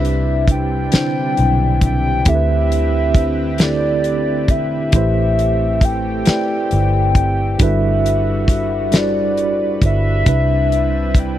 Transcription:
Already playing: C2 C3 G3 C4 D4 E4 G4 B4 E5
0.05 closed hi-hat
0.47 G5, kick, closed hi-hat
0.91 D3 C4 D4 E4 C5, muted fingered electric bass stroke, snare, closed hi-hat
1.37 B1, closed hi-hat
1.81 G5, kick, closed hi-hat
2.25 D2 D3 A3 C4 E4 G4 A4 B4 E5, kick, closed hi-hat
2.35 B4
2.72 closed hi-hat
3.15 kick, closed hi-hat
3.58 D3 A3 C4 E4 G4, snare, closed hi-hat
3.62 A4 D5
4.04 closed hi-hat
4.48 E1 E5, kick, closed hi-hat
4.92 A1 A3 C4 E4 G4 B4 C5, kick, closed hi-hat
5.39 closed hi-hat
5.81 G5, kick, closed hi-hat
6.25 A3 E4 G4 B4 D5, muted fingered electric bass stroke, snare, closed hi-hat
6.71 G1, closed hi-hat
7.15 G5, kick, closed hi-hat
7.58 G1 G3 D4 E4 F#4 A4 B4, kick, closed hi-hat
7.63 E5
8.06 closed hi-hat
8.48 kick, closed hi-hat
8.92 G3 D4 E4 F#4 A4 C5, snare, closed hi-hat
8.97 D5
9.01 D5
9.37 closed hi-hat
9.82 G1 E5, kick, closed hi-hat
10.25 C2 C3 G3 C4 D4 E4 B4, kick, closed hi-hat
10.72 closed hi-hat
11.15 kick, closed hi-hat
11.19 G5

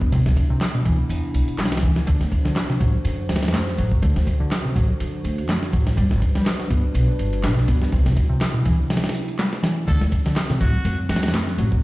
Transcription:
Already playing: G3 B3 D4 F#4
0.02 kick
0.12 C2 C3 B3 E4, kick, ride
0.26 C2, snare
0.37 kick, ride
0.50 C3
0.61 snare, clap, ride
0.74 B2
0.85 C3 E3, kick, ride
1.09 E2, ride
1.34 C2, ride
1.47 muted upright bass stroke, ride
1.58 C2 G3, snare, clap, ride
1.65 snare, ride
1.72 snare, ride
1.77 snare, ride
1.83 E3, kick, ride
1.96 snare
2.07 D2 D3 F#4 C5, kick, ride
2.20 D2, snare
2.32 kick, ride
2.45 D3, snare
2.56 snare, clap, ride
2.69 C3, snare
2.80 A1 F#3, kick, ride
3.04 F#2, ride
3.29 D2, snare, ride
3.36 snare, ride
3.43 snare, ride
3.48 snare, ride
3.53 F#2 A3, snare, clap, ride
3.67 snare
3.78 A1 F#3, ride
3.92 kick
4.02 D2 D3, kick, ride
4.16 D2, snare
4.27 kick, ride
4.40 D3
4.51 snare, clap, ride
4.65 C3
4.75 A1 F#3, kick, ride
5.00 F#2, ride
5.24 D2, ride
5.38 ride
5.49 F#2 A3, snare, clap, ride
5.63 snare
5.73 A1 F#3, kick, ride
5.87 snare
5.97 G1 G3 D4 F#4 B4, kick, ride
6.11 G1, snare
6.22 kick, ride
6.35 G3, snare
6.46 snare, clap, ride
6.60 F#3, snare
6.70 G2 B3, kick, ride
6.94 B1, ride
7.19 G1, ride
7.33 ride
7.43 B1 D4, snare, clap, ride
7.57 snare
7.68 G2 B3, kick, ride
7.82 snare
7.92 C2 C3 B3 E4, kick, ride
8.06 C2, snare
8.17 kick, ride
8.29 C3
8.41 snare, clap, ride
8.54 B2
8.65 C3 E3, kick, ride
8.90 snare, ride
8.97 snare, ride
9.04 snare, ride
9.09 snare, ride
9.15 ride
9.28 ride
9.39 G3, snare, clap, ride
9.53 snare
9.63 E3, snare, ride
9.87 D2 D3 A3 C4 F#4 A4, kick, closed hi-hat, ride
10.01 D2, snare, high conga
10.12 kick, closed hi-hat, ride
10.25 D3, snare, closed hi-hat
10.36 snare, clap, closed hi-hat, ride
10.50 C3, snare, closed hi-hat, high conga, low conga
10.61 A1 F#3 F#4, kick, closed hi-hat, ride
10.74 closed hi-hat
10.85 F#2, closed hi-hat, ride, high conga
11.09 D2 F#4, snare, closed hi-hat, ride
11.16 snare, ride
11.23 F#4, snare, closed hi-hat, ride, high conga
11.28 snare, ride
11.33 F#2 A3, snare, clap, closed hi-hat, ride
11.47 snare
11.58 A1 F#3, closed hi-hat, ride, high conga
11.72 kick, closed hi-hat

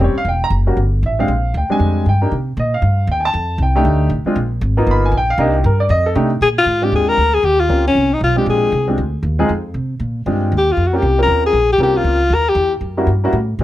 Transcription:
0.00 F1 G3 C4 C#4 G4
0.04 C#5
0.15 F5, muted upright bass stroke
0.25 E1 G5
0.44 A#5
0.50 F#1
0.66 G3 A#3 C#4 F#4
0.77 G1
1.03 A1 E5
1.19 G#3 C4 D4 G4 F5
1.28 A#1
1.54 D2 G5
1.69 G3 G#3 C4 D4 G#5, muted upright bass stroke
1.79 F2
2.06 G2 G5
2.22 A#3 D4 D#4 G4
2.32 C3
2.57 A#2 D#5
2.74 F5
2.82 G2
3.07 D#2
3.12 G5
3.20 G#5
3.25 A5
3.33 F2
3.58 C2
3.62 G5
3.76 A3 D4 D#4 G4
3.85 D2
4.10 A1
4.25 G#3 C4 D4 F4, muted upright bass stroke
4.36 A#1
4.61 G#1
4.77 A#3 B3 D#4 F4
4.87 G1
4.91 B5
5.06 G#5
5.12 A#1
5.17 G5
5.30 F5
5.38 C2 A#3 D4 D#4 G4 D#5
5.55 G4
5.64 G2 A#4
5.80 D5
5.89 F2 D#5
6.06 A4
6.15 C3 A3 D4 D#4 G4
6.41 A#2 G#4
6.58 F4
6.66 G#2
6.82 G#3 C4 D4 F4 G4
6.92 D#2 G#4
7.09 A#4
7.17 D2
7.34 G#4
7.43 D#2 G4
7.60 F4
7.69 C#2 A#3 C4 C#4 F4 G4
7.88 C#4
7.95 C2
8.13 D#4
8.21 B1 F4
8.36 G#3 C4 D4 F4 G4
8.46 A#1 G#4
8.72 C2
8.88 G#3 C4 D4 F4 G4
8.98 D2
9.23 D#2
9.39 G#3 C4 D#4 F4 G#4
9.49 F2
9.74 C3
10.00 A#2
10.26 G2 G#3 C4 D4 F4 G4
10.52 D#2
10.58 G4
10.72 F4
10.77 F2
10.87 F#4
10.93 A#3 C4 C#4 F4 G4
11.02 C2
11.18 A#3 C4 C#4 F4 A#4
11.22 A#4
11.27 D#2
11.46 G#4
11.53 A#1
11.72 G4
11.78 C2 A#3 C4 C#4 F4 G4
11.83 G4
11.97 F4
12.04 C#2
12.30 D#2
12.34 A#4
12.49 G4
12.55 E2
12.81 F#2
12.97 G3 A#3 C#4 E4 F#4
13.07 G2
13.24 G3 A#3 C#4 E4 F#4
13.33 A2
13.59 A#2 G#3 C4

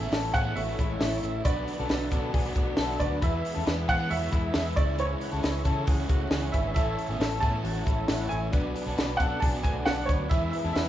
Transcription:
Already playing: E3 A3 C#4 E5
0.02 A3 B3 C#4 E4 G#4
0.11 A1 C#4 E4 A4 B4, snare, hi-hat pedal, open hi-hat
0.33 A2 E3 A3 B3 C#4 E4 G#4 A4 C#5 F#5, kick, hi-hat pedal, open hi-hat
0.56 A1 A3 C#4 E4 F#4 A4 B4 E5, hi-hat pedal, open hi-hat
0.68 A3 C#4 E4
0.78 A1 G#3 C#4 E4 A4 C#5, kick, hi-hat pedal, open hi-hat
1.00 A1 E3 A3 C#4 E4 A4 C#5, snare, hi-hat pedal, open hi-hat
1.23 A1 C#4 E4 A4 E5, hi-hat pedal, open hi-hat
1.44 B1 D3 F#3 B3 D4 F#4 B4 D5, kick, hi-hat pedal, open hi-hat
1.67 D4 F#4 B4 D5, hi-hat pedal, open hi-hat
1.79 B1 B3 C#4 D4 F#4 A4
1.88 B1 D4 F#4 B4 E5, snare, hi-hat pedal, open hi-hat
2.11 B2 F#3 B3 C#4 D4 F#4 A4 B4 D5, kick, hi-hat pedal, open hi-hat
2.33 B1 B3 D4 F#4 G#4 B4 D5, kick, hi-hat pedal, open hi-hat
2.45 B3 D4 F#4
2.55 B1 A3 D4 F#4 B4 D5, kick, hi-hat pedal, open hi-hat
2.77 B1 F#3 B3 D4 F#4 A4 B4 E5, snare, hi-hat pedal, open hi-hat
2.81 F#4
2.99 D2 D4 F#4 B4 D5, kick, hi-hat pedal, open hi-hat
3.21 E2 E3 G#3 B3 E4 G#4 B4 E5, kick, hi-hat pedal, open hi-hat
3.44 E4 G#4 B4 E5, hi-hat pedal, open hi-hat
3.55 E2 E3 G#3 B3 C#4 E4 A4
3.66 E2 E4 G#4 B4 D5, snare, hi-hat pedal, open hi-hat
3.88 E3 G#3 B3 E4 G#4 B4 C#5 F#5, kick, hi-hat pedal, open hi-hat
4.10 E2 B3 E4 F#4 G#4 B4 C#5 E5, hi-hat pedal, open hi-hat
4.21 E3 G#3 B3 E4
4.32 E2 G#3 E4 G#4 B4 E5, kick, hi-hat pedal, open hi-hat
4.54 E2 E3 G#3 B3 E4 G#4 B4 E5, snare, hi-hat pedal, open hi-hat
4.76 C#2 C#3 E3 G#3 C#4 E4 G#4 C#5 D5 E5, kick, hi-hat pedal, open hi-hat
4.98 E4 B4 C#5, hi-hat pedal, open hi-hat
5.21 E4 G#4 C#5 F#5, hi-hat pedal, open hi-hat
5.32 C#2 G#3 C#4 E4 A4
5.42 C#2 E4 G#4 B4 C#5 E5, snare, hi-hat pedal, open hi-hat
5.64 C#3 E3 G#3 C#4 E4 G#4 A4 C#5 E5, kick, hi-hat pedal, open hi-hat
5.85 C#2 C#4 E4 G#4 C#5 F#5, kick, hi-hat pedal, open hi-hat
6.00 G#3 C#4 E4
6.08 C#2 A3 E4 F#4 G#4 C#5 F#5, kick, hi-hat pedal, open hi-hat
6.30 C#2 E3 G#3 C#4 E4 G#4 C#5 F#5, snare, hi-hat pedal, open hi-hat
6.35 E4
6.51 G#1 D4 E4 G#4 B4 C#5 E5, kick, hi-hat pedal, open hi-hat
6.74 A1 E3 A3 C#4 E4 A4 C#5 E5, kick, hi-hat pedal, open hi-hat
6.78 E4
6.96 E4 A4 C#5 E5, hi-hat pedal, open hi-hat
7.09 A1 A3 B3 C#4 E4 G#4
7.19 A1 C#4 E4 A4 C#5 E5, snare, hi-hat pedal, open hi-hat
7.40 A2 E3 A3 B3 C#4 E4 G#4 A4 C#5 E5 A5, kick, hi-hat pedal, open hi-hat
7.44 E4
7.63 A1 A3 E4 F#4 A4 C#5 F#5, hi-hat pedal, open hi-hat
7.76 A3 C#4 E4
7.85 A1 G#3 E4 A4 C#5 E5, kick, hi-hat pedal, open hi-hat
8.07 A1 E3 A3 C#4 E4 A4 C#5 F#5, snare, hi-hat pedal, open hi-hat
8.29 A1 E4 A4 C#5 E5 G#5, hi-hat pedal, open hi-hat
8.51 B1 F#3 B3 D4 F#4 B4 D5, kick, hi-hat pedal, open hi-hat
8.74 D4 F#4 B4 D5, hi-hat pedal, open hi-hat
8.85 B1 B3 C#4 D4 F#4 A4
8.96 B1 D4 F#4 B4 D5, snare, hi-hat pedal, open hi-hat
9.17 B2 F#3 B3 C#4 D4 F#4 A4 B4 D5 F#5, kick, hi-hat pedal, open hi-hat
9.40 B1 B3 D4 F#4 G#4 B4 D5 A5, kick, hi-hat pedal, open hi-hat
9.53 B3 D4 F#4
9.63 B1 A3 D4 F#4 B4 D5 G#5, kick, hi-hat pedal, open hi-hat
9.85 B1 F#3 B3 D4 F#4 A4 B4 D5 F#5, snare, hi-hat pedal, open hi-hat
10.06 D2 D4 F#4 B4 C#5 D5, kick, hi-hat pedal, open hi-hat
10.29 E2 E3 G#3 B3 E4 G#4 B4 E5, kick, hi-hat pedal, open hi-hat
10.51 E4 G#4 B4 E5, hi-hat pedal, open hi-hat
10.64 E2 E3 G#3 B3 C#4 G#4 A4
10.73 E2 E4 G#4 B4 E5 F#5, snare, hi-hat pedal, open hi-hat

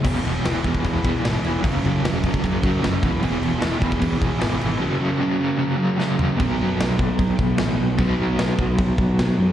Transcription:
0.04 E1 E2 B2 E3, kick, crash
0.24 E1 E2 B2 E3, crash
0.44 E1 E2 B2 E3, snare, crash
0.64 E1 E2 B2 E3, kick, crash
0.75 kick
0.83 E2 B2 E3, kick, crash
1.03 E2 B2 E3, kick, crash
1.24 G#1 E2 B2 E3, snare, crash
1.42 E1 E2 B2 E3, crash
1.62 F#1 F#2 C#3 F#3, kick, crash
1.83 F#1 F#2 C#3 F#3, crash
2.03 E1 F#2 C#3 F#3, snare, crash
2.22 F#2 C#3 F#3, kick, crash
2.34 kick
2.43 F#1 F#2 C#3 F#3, kick, crash
2.63 F#2 C#3 F#3, kick, crash
2.82 F#1 F#2 C#3 F#3, snare, crash
3.02 E1 E2 B2 E3, kick, crash
3.22 E1 E2 B2 E3, crash
3.42 E1 E2 B2 E3, crash
3.60 E1 E2 B2 E3, snare, crash
3.79 E1 E2 B2 E3, kick, crash
3.92 kick
4.00 E2 B2 E3, kick, crash
4.18 E2 B2 E3, kick, crash
4.40 G#1 E2 B2 E3, snare, crash
4.59 G#1 E2 B2 E3, crash
4.80 F#2 C#3 F#3
5.00 F#2 C#3 F#3
5.19 F#2 C#3 F#3
5.39 F#2 C#3 F#3
5.57 F#2 C#3 F#3
5.77 F#2 C#3 F#3
5.97 F#2 C#3 F#3, snare
6.19 F#2 C#3 F#3, floor tom
6.37 B1 B2 F#3, kick, crash
6.41 B3
6.62 F#2
6.80 B1, snare, crash
6.99 B1, kick
7.19 B1, kick, crash
7.39 B1, kick
7.58 A1, snare, crash
7.79 B1
7.98 B1 B2 F#3, kick, crash
8.02 B3
8.39 B1, snare, crash
8.59 B1, kick
8.78 B1, kick, crash
8.98 B1, kick
9.19 B2, snare, crash
9.38 F#2

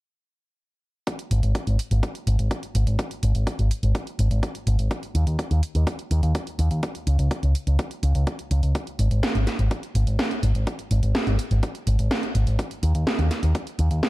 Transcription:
1.07 kick, closed hi-hat
1.19 closed hi-hat
1.31 G#1, closed hi-hat
1.43 G#1, closed hi-hat
1.55 kick, closed hi-hat
1.67 G#1, closed hi-hat
1.79 closed hi-hat
1.91 G#1, closed hi-hat
2.03 kick, closed hi-hat
2.15 closed hi-hat
2.27 G#1, closed hi-hat
2.39 G#1, closed hi-hat
2.51 kick, closed hi-hat
2.63 closed hi-hat
2.75 G#1, closed hi-hat
2.87 G#1, closed hi-hat
2.99 kick, closed hi-hat
3.11 closed hi-hat
3.23 G#1, closed hi-hat
3.35 G#1, closed hi-hat
3.47 kick, closed hi-hat
3.59 G#1, closed hi-hat
3.71 closed hi-hat
3.83 G#1, closed hi-hat
3.95 kick, closed hi-hat
4.07 closed hi-hat
4.19 G#1, closed hi-hat
4.31 G#1, closed hi-hat
4.43 kick, closed hi-hat
4.55 closed hi-hat
4.67 G#1, closed hi-hat
4.79 G#1, closed hi-hat
4.91 kick, closed hi-hat
5.03 closed hi-hat
5.15 D#2, closed hi-hat
5.27 D#2, closed hi-hat
5.39 kick, closed hi-hat
5.51 D#2, closed hi-hat
5.63 closed hi-hat
5.75 D#2, closed hi-hat
5.87 kick, closed hi-hat
5.99 closed hi-hat
6.11 D#2, closed hi-hat
6.23 D#2, closed hi-hat
6.35 kick, closed hi-hat
6.47 closed hi-hat
6.59 D#2, closed hi-hat
6.71 D#2, closed hi-hat
6.83 kick, closed hi-hat
6.95 closed hi-hat
7.07 C#2, closed hi-hat
7.19 C#2, closed hi-hat
7.31 kick, closed hi-hat
7.43 C#2, closed hi-hat
7.55 closed hi-hat
7.67 C#2, closed hi-hat
7.79 kick, closed hi-hat
7.91 closed hi-hat
8.03 C#2, closed hi-hat
8.15 C#2, closed hi-hat
8.27 kick, closed hi-hat
8.39 closed hi-hat
8.51 C#2, closed hi-hat
8.63 C#2, closed hi-hat
8.75 kick, closed hi-hat
8.87 closed hi-hat
8.99 G#1, closed hi-hat
9.11 G#1, closed hi-hat
9.23 kick, snare, closed hi-hat
9.35 G#1, closed hi-hat
9.47 snare, closed hi-hat
9.59 G#1, closed hi-hat
9.71 kick, closed hi-hat
9.83 closed hi-hat
9.95 G#1, closed hi-hat
10.07 G#1, closed hi-hat
10.19 kick, snare, closed hi-hat
10.31 closed hi-hat
10.43 G#1, closed hi-hat
10.55 G#1, closed hi-hat
10.67 kick, closed hi-hat
10.79 closed hi-hat
10.91 G#1, closed hi-hat
11.03 G#1, closed hi-hat
11.15 kick, snare, closed hi-hat
11.27 G#1, closed hi-hat
11.39 closed hi-hat
11.51 G#1, closed hi-hat
11.63 kick, closed hi-hat
11.75 closed hi-hat
11.87 G#1, closed hi-hat
11.99 G#1, closed hi-hat
12.11 kick, snare, closed hi-hat
12.23 closed hi-hat
12.35 G#1, closed hi-hat
12.47 G#1, closed hi-hat
12.59 kick, closed hi-hat
12.71 closed hi-hat
12.83 D#2, closed hi-hat
12.95 D#2, closed hi-hat
13.07 kick, snare, closed hi-hat
13.19 D#2, closed hi-hat
13.31 snare, closed hi-hat
13.43 D#2, closed hi-hat
13.55 kick, closed hi-hat
13.67 closed hi-hat
13.79 D#2, closed hi-hat
13.91 D#2, closed hi-hat
14.03 kick, snare, closed hi-hat

